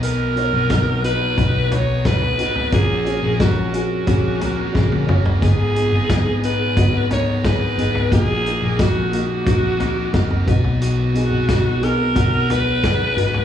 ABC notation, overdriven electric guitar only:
X:1
M:4/4
L:1/16
Q:1/4=89
K:B
V:1 name="Overdriven electric guitar"
[B,,D,F,B,DB]3 [F,B,DB]4- [F,B,DB] [F,B,DB]2 [F,B,DB]2 [F,B,DB]2 [F,B,DB]2 | [A,CFA]3 [CFA]4- [CFA] [A,CFA]2 [A,CFA]2 [A,CFA]2 [A,CFA]2 | [G,,D,G,B,DB]3 [G,B,DB]4- [G,B,DB] [G,B,DB]2 [G,B,DB]2 [G,B,DB]2 [G,B,DB]2 | [A,,D,A,DFA]3 [A,DFA]4- [A,DFA] [A,DFA]2 [A,DFA]2 [A,DFA]2 [F,B,FB]2 |
[B,,D,F,B,FB]3 [F,B,FB]4- [F,B,FB] [F,B,FB]2 [F,B,FB]2 [F,B,FB]2 [F,B,FB]2 |]